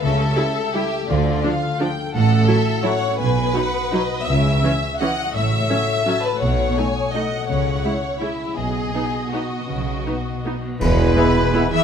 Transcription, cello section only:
X:1
M:3/4
L:1/8
Q:1/4=166
K:Ddor
V:1 name="Cello section" clef=bass
^C,2 z4 | D,2 z4 | [K:Bmix] A,,2 z4 | B,,2 z4 |
C,2 z4 | A,,2 z4 | B,,2 z4 | C,2 z4 |
B,,2 B,,4 | C,2 B,,4 | B,,4- B,, E, |]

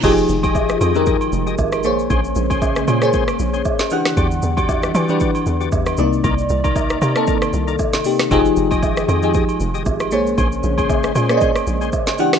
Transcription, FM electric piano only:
X:1
M:4/4
L:1/16
Q:"Swing 16ths" 1/4=116
K:Fm
V:1 name="FM electric piano"
[F,EGA]6 z [F,EGB]6 z [B,Acd]2- | [B,Acd]4 z3 [B,Acd]6 z [=E,=DG^f]2- | [=E,=DG^f]4 z3 [E,DG=B]6 z [C,_B,_E=d]2- | [C,B,E=d]4 z3 [C,B,E=A]6 z [C,B,EG]2 |
[F,EGA]6 z [F,EGA]6 z [B,Acd]2- | [B,Acd]4 z3 [B,Ac=de]6 z [=E,=DG^f]2 |]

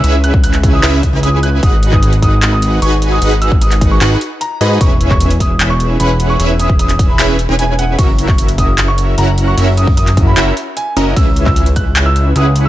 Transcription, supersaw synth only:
X:1
M:4/4
L:1/16
Q:1/4=151
K:G#m
V:1 name="Supersaw synth"
[CEGBe]8 [CEGBe]2 z [CEGBg]4- [CEGBg] | [DFGBf]12 [DFGBg]4 | [DFGBf]8 [DFGBf]2 z4 [DFGBd]2 | [CEe]12 [CEGBf]4 |
[CEGBe]8 [CEGBe]2 z [CEGBg]4- [CEGBg] | [CEFAe]12 [CEFAf]4 | [CEFAe]8 [CEFAe]2 z4 [CEFAd]2 | [CBe]12 [CEGBf]4 |]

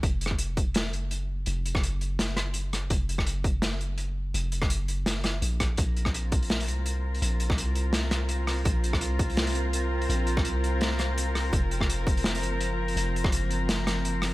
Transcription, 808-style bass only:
X:1
M:4/4
L:1/8
Q:"Swing 16ths" 1/4=167
K:Fphr
V:1 name="808-style bass" clef=bass
F,,,4- F,,, G,,,3 | F,,,2 G,,,6 | F,,,2 G,,,6 | F,,,2 G,,,4 B,,,2 |
B,,,4- B,,, C,,3 | B,,,2 C,,6 | B,,,2 C,,6 | B,,,2 C,,6 |
F,,,4- F,,, G,,,3 | F,,,2 G,,,6 |]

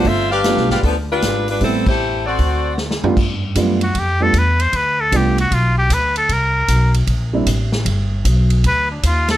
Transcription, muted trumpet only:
X:1
M:4/4
L:1/8
Q:"Swing" 1/4=154
K:Gmix
V:1 name="Muted trumpet"
z8 | z8 | z3 ^F G A B c | B A G ^F =F G B A |
_B3 z4 z | z4 B D F A |]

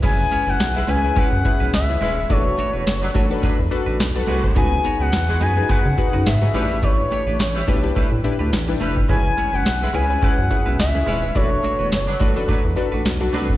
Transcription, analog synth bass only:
X:1
M:4/4
L:1/16
Q:"Swing 16ths" 1/4=106
K:F#m
V:1 name="Analog synth bass" clef=bass
F,,,2 z F,,, B,,,2 C,,2 F,, F,, z B,,, C,,2 ^D,,,2 | E,,,2 z E,,, F,,,2 A,,,2 E,, E,, z A,,, B,,,2 ^B,,,2 | C,,2 z C,, E,,2 F,,2 C, C, z F,, G,,2 A,,,2- | A,,,2 z A,,, A,,,2 B,,,2 A,, A,, z D,, A,,,2 ^E,,,2 |
F,,,2 z F,,, B,,,2 C,,2 F,, F,, z B,,, C,,2 ^D,,,2 | E,,,2 z E,,, F,,,2 A,,,2 E,, E,, z A,,, B,,,2 ^B,,,2 |]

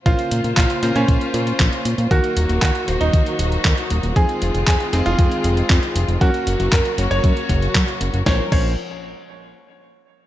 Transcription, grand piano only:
X:1
M:4/4
L:1/16
Q:1/4=117
K:Bbm
V:1 name="Grand piano"
F3 z F3 D8 z | G3 z G3 E8 z | A3 z A3 F8 z | G3 z B3 d8 z |
d z d2 z12 |]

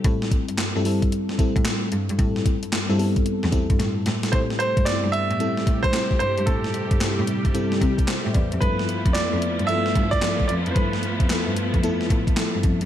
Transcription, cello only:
X:1
M:4/4
L:1/16
Q:"Swing 16ths" 1/4=112
K:Am
V:1 name="Cello" clef=bass
A,,2 z G,, G,, G,,2 z3 A,, A,, z2 G,, G,, | A,,2 z G,, G,, G,,2 z2 E,, z G,, A,,2 A,, z | A,,3 G,, z G,, z A,, z2 A,,2 z2 G,, G,, | A,,3 G,, z A,, z G,, z2 C,2 z A,, E,, F,, |
G,,3 F,, z F,, z G,, z2 G,,2 z2 F,, F,, | G,,3 F,, z G,, z F,, z2 A,,2 z G,, F,, G,, |]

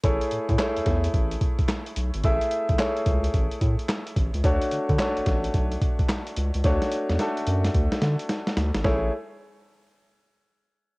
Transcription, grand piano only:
X:1
M:4/4
L:1/8
Q:"Swing 16ths" 1/4=109
K:A
V:1 name="Grand piano"
[A,EGc]2 [A,EGc]4 z2 | [A,EGe]2 [A,EGc]4 z2 | [A,DFc]2 [A,DFc]4 z2 | [A,DFc]2 [A,DFA]4 z2 |
[A,EGc] z6 z |]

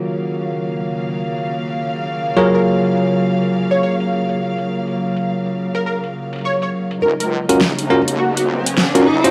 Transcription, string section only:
X:1
M:4/4
L:1/8
Q:"Swing 16ths" 1/4=103
K:Ebm
V:1 name="String section" clef=bass
[D,G,B,f]8- | [D,G,B,f]8- | [D,G,B,f]8 | [D,G,B,E]8 |]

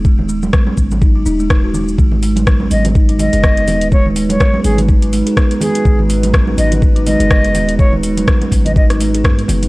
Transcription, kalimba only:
X:1
M:4/4
L:1/16
Q:"Swing 16ths" 1/4=124
K:G#m
V:1 name="Kalimba"
G, z G, z2 C z2 D F, D G, D, F F, z | G, z G, z2 C z2 D F, G, G B, B, B, z | G, z G, z2 C z2 D F, G, G z B, B, z | G, z G, z B, C z2 D F, G, G z B, B, z |
G, z G, z B, C z2 D F, G, G z B, B, z |]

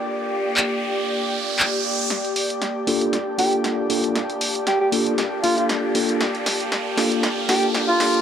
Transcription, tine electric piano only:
X:1
M:4/4
L:1/8
Q:"Swing 16ths" 1/4=117
K:Gm
V:1 name="Tine electric piano"
[B,DFGA]8 | z3 [B,DFGA] z [B,DFGA]2 [B,DFGA] | z3 [B,DFGA] z [B,DFGA]2 [B,DFGA] | z3 [B,DFGA] z [B,DFGA]2 [B,DFGA] |]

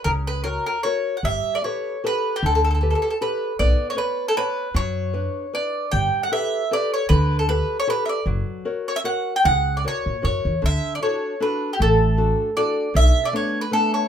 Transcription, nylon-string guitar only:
X:1
M:3/4
L:1/8
Q:"Swing" 1/4=154
K:Bm
V:1 name="Nylon-string guitar"
C,2 [F^Ac]2 [FAc]2 | G,2 [GAB]2 [GAB]2 | D,2 [GAB]2 [GAB]2 | B,2 [Bcd]2 [Bcd]2 |
F,2 [DBc]2 [Bd]2 | G,2 [GAB]2 [GAB]2 | D,2 [GAB]2 [GAB]2 | F,2 [F^Ac]2 [FAc]2 |
C,2 [F^Ac]2 [FAc]2 | D,2 [DFA]2 [DFA]2 | A,2 [DFA]2 [DFA]2 | B,,2 [A,B,D]2 [A,B,D]2 |]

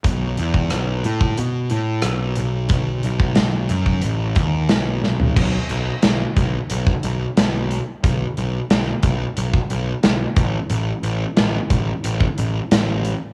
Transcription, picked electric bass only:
X:1
M:4/4
L:1/8
Q:1/4=90
K:Bmix
V:1 name="Picked electric bass" clef=bass
B,,, E,, B,,, A,, B,, A,, B,,, B,,, | B,,, B,,, B,,, F,, A,,, D,, B,,, B,,, | B,,, B,,, B,,, B,,, B,,, B,,, B,,,2 | B,,, B,,, B,,, B,,, B,,, B,,, B,,, A,,, |
A,,, A,,, A,,, A,,, A,,, A,,, A,,,2 |]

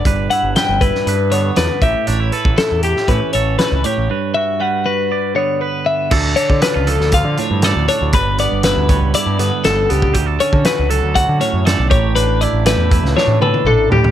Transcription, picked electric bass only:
X:1
M:4/4
L:1/16
Q:1/4=119
K:Glyd
V:1 name="Picked electric bass" clef=bass
G,,,2 z G,,, z G,,,2 z G,,4 E,, z A,,, z | A,,,2 z A,,, z E,,2 z A,, z A,,,2 z C,, z A,,, | z16 | D,,2 z D, z C,,2 D,,2 D, z G,,2 D,, z D,, |
G,,,3 G,,,2 D,,2 C,, z G,, G,, z G,,,2 C,,2 | D,,2 z D, z C,,2 D,,2 D, z F,,2 B,,, A,,,2- | A,,,3 A,,,2 E,,2 C,, z A,, A,, z A,,,2 A,,2 |]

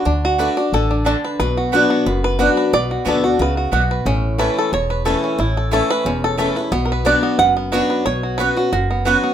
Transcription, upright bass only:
X:1
M:4/4
L:1/8
Q:"Swing" 1/4=180
K:Bm
V:1 name="Upright bass" clef=bass
D,,4 A,,,4 | B,,,4 F,,,4 | B,,,2 D,,2 C,,2 B,,,2 | A,,,4 E,,,4 |
A,,,4 E,,,4 | B,,,4 F,,,4 | B,,,4 F,,,4 |]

